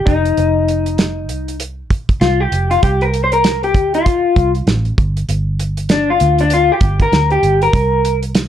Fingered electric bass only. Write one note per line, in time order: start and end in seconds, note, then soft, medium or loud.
0.07 0.32 F1 medium
0.38 1.30 F1 loud
1.30 1.90 C2 medium
2.21 2.46 C2 medium
2.52 2.76 F1 medium
2.83 3.75 C2 loud
3.75 4.24 D2 medium
4.37 4.61 C2 medium
4.67 4.91 A1 medium
4.98 5.22 G1 medium
5.29 6.16 G1 loud
6.21 6.70 D2 medium
6.81 7.06 G1 medium
7.12 7.37 D2 medium
7.43 7.67 G1 medium
7.73 8.48 C2 medium